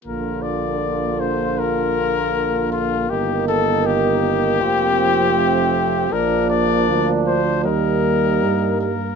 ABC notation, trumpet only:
X:1
M:4/4
L:1/8
Q:1/4=79
K:Bb
V:1 name="Trumpet"
B d2 c B3 F | G A G6 | B d2 c B3 B |]